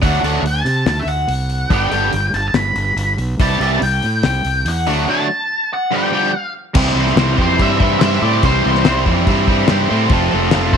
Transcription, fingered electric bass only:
0.03 D2
0.23 D2
0.42 D2
0.65 C3
0.86 D2
1.05 D2
1.28 C2
1.71 G1
1.91 G1
2.13 G1
2.33 G1
2.53 G1
2.75 G1
2.96 G1
3.17 B1
3.40 C2
3.60 C2
3.82 C2
4.04 A2
4.25 C2
4.45 C2
4.65 E2
4.88 D2
6.75 C2
6.94 C2
7.16 C2
7.38 F2
7.60 G2
8.01 G2
8.22 A2
8.44 C2
8.66 C2
8.87 C2
9.06 F2
9.27 G2
9.71 G2
9.91 A2
10.10 F1
10.33 F1
10.54 F1
10.73 A1

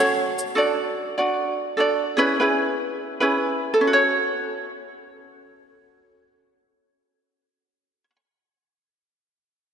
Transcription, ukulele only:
Already playing: C#5
0.00 C#4 F#4 A4
0.55 D4 F#4 A4 D5
1.18 D4 F#4 D5
1.77 D4 F#4 A4 D5
2.17 C#4 E4 G#4 B4
2.40 C#4 E4 G#4 B4
3.20 C#4 E4 G#4 B4
3.74 A4
3.81 C#4
3.87 F#4
3.93 C#5

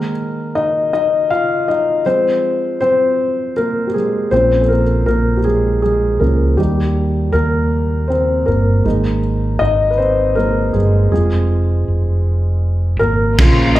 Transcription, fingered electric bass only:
4.32 A#1
5.07 A#1
6.20 C#2
6.58 D#2
7.34 D#2
8.46 G1
8.85 G#1
9.61 G#1
10.74 G1
11.12 F1
11.88 F1
13.00 G#1
13.38 A#1

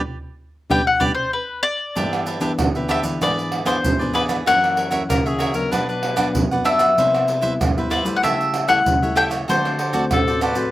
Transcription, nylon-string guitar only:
0.70 G3 B3 D4
1.00 G3 B3 D4
1.96 G2 E3 B3 D4
2.40 E3 B3 D4
2.59 D3
2.75 E3 B3 D4
3.03 E3 B3 D4
3.21 G#2
3.65 E3 B3 D4
3.84 G#2
4.00 E3 B3 D4
4.47 F#2 E3 A#3 C#4
4.92 E3 A#3 C#4
5.10 C#3
5.27 E3 A#3 C#4
5.55 F#3 B3 D4
5.73 B2
6.18 F#3 B3 D4
6.36 F#2
6.52 F#3 B3 D4
6.98 C3 G3 B3 E4
7.43 G3 B3 E4
7.61 G2
7.77 G3 B3 E4
8.05 G3 A3 E4
8.24 C#3
8.69 G3 A3 E4
8.86 C#3
9.03 G3 A3 E4
9.49 D3 A3 C4 F#4
9.93 A3 C4 F#4
10.11 A2
10.27 A3 C4 F#4
10.55 A3 C4 F#4

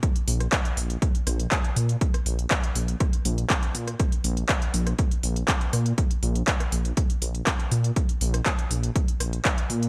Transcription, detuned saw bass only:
0.28 A#1
0.77 A#1
1.27 A#1
1.76 A#2
2.26 A#1
2.76 A#1
3.25 A#1
3.75 A#2
4.24 A#1
4.74 A#1
5.24 A#1
5.73 A#2
6.23 A#1
6.72 A#1
7.22 A#1
7.72 A#2
8.21 A#1
8.71 A#1
9.20 A#1
9.70 A#2

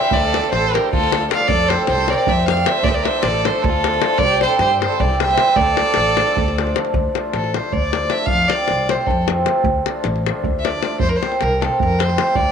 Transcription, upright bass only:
0.12 D2
0.52 A1
0.93 D2
1.50 F2
1.88 C2
2.28 F2
2.83 D2
3.23 A1
3.64 D2
4.18 C2
4.59 G2
5.00 C2
5.57 D2
5.97 A1
6.38 D2
6.94 D2
7.33 A1
7.73 D2
8.30 F2
8.71 C2
9.10 F2
9.64 D2
10.05 A1
10.44 D2
11.01 F2
11.42 C2
11.82 F2
12.36 D2

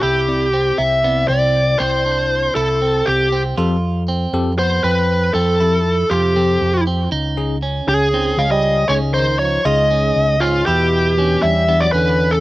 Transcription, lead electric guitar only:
0.03 G4
0.78 E5
1.28 D5
1.79 C5
2.55 A4
3.06 G4
4.59 C5
4.84 B4
5.34 A4
6.10 G4
7.89 G#4
8.39 F5
8.51 D#5
8.88 C#5
9.14 C5
9.39 C#5
9.65 D#5
10.40 F4
10.66 G4
11.42 E5
11.80 D5
11.92 B4
12.31 A4

